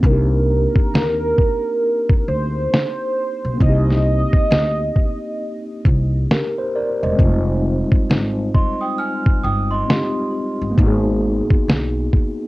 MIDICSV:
0, 0, Header, 1, 6, 480
1, 0, Start_track
1, 0, Key_signature, -3, "minor"
1, 0, Tempo, 895522
1, 14, Time_signature, 4, 2, 24, 8
1, 6687, End_track
2, 0, Start_track
2, 0, Title_t, "Celesta"
2, 0, Program_c, 0, 8
2, 4580, Note_on_c, 0, 84, 77
2, 4582, Note_on_c, 0, 75, 58
2, 4717, Note_off_c, 0, 84, 0
2, 4718, Note_off_c, 0, 75, 0
2, 4722, Note_on_c, 0, 87, 71
2, 4724, Note_on_c, 0, 79, 67
2, 4810, Note_off_c, 0, 87, 0
2, 4811, Note_off_c, 0, 79, 0
2, 4816, Note_on_c, 0, 89, 92
2, 4820, Note_on_c, 0, 80, 70
2, 5043, Note_off_c, 0, 89, 0
2, 5045, Note_off_c, 0, 80, 0
2, 5057, Note_on_c, 0, 87, 82
2, 5060, Note_on_c, 0, 79, 62
2, 5195, Note_off_c, 0, 87, 0
2, 5197, Note_off_c, 0, 79, 0
2, 5203, Note_on_c, 0, 84, 83
2, 5206, Note_on_c, 0, 75, 67
2, 5754, Note_off_c, 0, 84, 0
2, 5755, Note_off_c, 0, 75, 0
2, 6687, End_track
3, 0, Start_track
3, 0, Title_t, "Soft synth lead"
3, 0, Program_c, 1, 80
3, 31, Note_on_c, 1, 70, 106
3, 1225, Note_on_c, 1, 72, 71
3, 1233, Note_off_c, 1, 70, 0
3, 1918, Note_off_c, 1, 72, 0
3, 1942, Note_on_c, 1, 75, 111
3, 3024, Note_off_c, 1, 75, 0
3, 6687, End_track
4, 0, Start_track
4, 0, Title_t, "Tine electric piano"
4, 0, Program_c, 2, 4
4, 0, Control_c, 2, 64, 127
4, 0, Note_on_c, 2, 58, 60
4, 2, Note_on_c, 2, 60, 59
4, 21, Control_c, 2, 64, 0
4, 23, Note_on_c, 2, 62, 59
4, 45, Note_on_c, 2, 63, 51
4, 64, Note_on_c, 2, 67, 67
4, 118, Control_c, 2, 64, 127
4, 1890, Note_off_c, 2, 58, 0
4, 1896, Note_on_c, 2, 58, 61
4, 1907, Note_off_c, 2, 60, 0
4, 1917, Note_off_c, 2, 62, 0
4, 1917, Note_on_c, 2, 60, 61
4, 1928, Note_off_c, 2, 63, 0
4, 1938, Note_off_c, 2, 67, 0
4, 1961, Note_on_c, 2, 63, 56
4, 1979, Note_on_c, 2, 67, 63
4, 3375, Note_off_c, 2, 67, 0
4, 3383, Note_on_c, 2, 70, 65
4, 3387, Note_on_c, 2, 67, 51
4, 3518, Note_off_c, 2, 70, 0
4, 3521, Note_off_c, 2, 67, 0
4, 3528, Note_on_c, 2, 72, 73
4, 3613, Note_off_c, 2, 72, 0
4, 3621, Note_on_c, 2, 74, 64
4, 3623, Note_on_c, 2, 70, 59
4, 3757, Note_off_c, 2, 74, 0
4, 3759, Note_off_c, 2, 70, 0
4, 3767, Note_on_c, 2, 75, 65
4, 3771, Note_on_c, 2, 72, 61
4, 3814, Note_off_c, 2, 58, 0
4, 3819, Note_on_c, 2, 56, 74
4, 3824, Note_off_c, 2, 60, 0
4, 3839, Note_on_c, 2, 60, 74
4, 3846, Note_off_c, 2, 63, 0
4, 3859, Note_on_c, 2, 63, 70
4, 3862, Control_c, 2, 64, 0
4, 3881, Note_on_c, 2, 65, 72
4, 3904, Note_on_c, 2, 55, 80
4, 3962, Control_c, 2, 64, 127
4, 3992, Note_off_c, 2, 75, 0
4, 3994, Note_off_c, 2, 72, 0
4, 5255, Note_off_c, 2, 56, 0
4, 5265, Note_off_c, 2, 60, 0
4, 5275, Note_off_c, 2, 63, 0
4, 5281, Note_on_c, 2, 56, 55
4, 5286, Note_off_c, 2, 65, 0
4, 5292, Note_on_c, 2, 60, 52
4, 5298, Note_off_c, 2, 55, 0
4, 5301, Note_on_c, 2, 63, 52
4, 5313, Note_on_c, 2, 65, 51
4, 5322, Note_on_c, 2, 67, 59
4, 5741, Note_on_c, 2, 58, 71
4, 5762, Note_on_c, 2, 59, 69
4, 5767, Note_off_c, 2, 56, 0
4, 5773, Note_off_c, 2, 60, 0
4, 5775, Note_off_c, 2, 63, 0
4, 5782, Control_c, 2, 64, 0
4, 5782, Note_on_c, 2, 63, 73
4, 5784, Note_off_c, 2, 65, 0
4, 5788, Note_off_c, 2, 67, 0
4, 5803, Note_on_c, 2, 66, 66
4, 5826, Note_on_c, 2, 68, 90
4, 5893, Control_c, 2, 64, 127
4, 6687, Note_off_c, 2, 58, 0
4, 6687, Note_off_c, 2, 59, 0
4, 6687, Note_off_c, 2, 63, 0
4, 6687, Note_off_c, 2, 66, 0
4, 6687, Note_off_c, 2, 68, 0
4, 6687, End_track
5, 0, Start_track
5, 0, Title_t, "Upright bass"
5, 0, Program_c, 3, 32
5, 19, Note_on_c, 3, 36, 109
5, 345, Note_off_c, 3, 36, 0
5, 503, Note_on_c, 3, 39, 82
5, 703, Note_off_c, 3, 39, 0
5, 1222, Note_on_c, 3, 38, 97
5, 1423, Note_off_c, 3, 38, 0
5, 1847, Note_on_c, 3, 35, 85
5, 1924, Note_off_c, 3, 35, 0
5, 1935, Note_on_c, 3, 36, 105
5, 2263, Note_off_c, 3, 36, 0
5, 2415, Note_on_c, 3, 38, 98
5, 2619, Note_off_c, 3, 38, 0
5, 3140, Note_on_c, 3, 36, 96
5, 3341, Note_off_c, 3, 36, 0
5, 3768, Note_on_c, 3, 28, 91
5, 3844, Note_off_c, 3, 28, 0
5, 3856, Note_on_c, 3, 29, 102
5, 4184, Note_off_c, 3, 29, 0
5, 4339, Note_on_c, 3, 32, 88
5, 4541, Note_off_c, 3, 32, 0
5, 5061, Note_on_c, 3, 31, 91
5, 5262, Note_off_c, 3, 31, 0
5, 5689, Note_on_c, 3, 31, 85
5, 5765, Note_off_c, 3, 31, 0
5, 5779, Note_on_c, 3, 32, 108
5, 6106, Note_off_c, 3, 32, 0
5, 6262, Note_on_c, 3, 35, 86
5, 6462, Note_off_c, 3, 35, 0
5, 6687, End_track
6, 0, Start_track
6, 0, Title_t, "Drums"
6, 16, Note_on_c, 9, 36, 100
6, 70, Note_off_c, 9, 36, 0
6, 405, Note_on_c, 9, 36, 90
6, 459, Note_off_c, 9, 36, 0
6, 510, Note_on_c, 9, 38, 108
6, 564, Note_off_c, 9, 38, 0
6, 741, Note_on_c, 9, 36, 92
6, 795, Note_off_c, 9, 36, 0
6, 1123, Note_on_c, 9, 36, 104
6, 1177, Note_off_c, 9, 36, 0
6, 1467, Note_on_c, 9, 38, 114
6, 1521, Note_off_c, 9, 38, 0
6, 1932, Note_on_c, 9, 36, 102
6, 1986, Note_off_c, 9, 36, 0
6, 2093, Note_on_c, 9, 38, 36
6, 2147, Note_off_c, 9, 38, 0
6, 2321, Note_on_c, 9, 36, 96
6, 2375, Note_off_c, 9, 36, 0
6, 2422, Note_on_c, 9, 38, 109
6, 2475, Note_off_c, 9, 38, 0
6, 2657, Note_on_c, 9, 36, 94
6, 2711, Note_off_c, 9, 36, 0
6, 3136, Note_on_c, 9, 36, 90
6, 3189, Note_off_c, 9, 36, 0
6, 3382, Note_on_c, 9, 38, 108
6, 3436, Note_off_c, 9, 38, 0
6, 3853, Note_on_c, 9, 36, 107
6, 3907, Note_off_c, 9, 36, 0
6, 4244, Note_on_c, 9, 36, 100
6, 4297, Note_off_c, 9, 36, 0
6, 4346, Note_on_c, 9, 38, 103
6, 4400, Note_off_c, 9, 38, 0
6, 4580, Note_on_c, 9, 36, 91
6, 4634, Note_off_c, 9, 36, 0
6, 4964, Note_on_c, 9, 36, 95
6, 5018, Note_off_c, 9, 36, 0
6, 5306, Note_on_c, 9, 38, 121
6, 5359, Note_off_c, 9, 38, 0
6, 5776, Note_on_c, 9, 36, 101
6, 5829, Note_off_c, 9, 36, 0
6, 6166, Note_on_c, 9, 36, 98
6, 6220, Note_off_c, 9, 36, 0
6, 6269, Note_on_c, 9, 38, 102
6, 6322, Note_off_c, 9, 38, 0
6, 6503, Note_on_c, 9, 36, 82
6, 6556, Note_off_c, 9, 36, 0
6, 6687, End_track
0, 0, End_of_file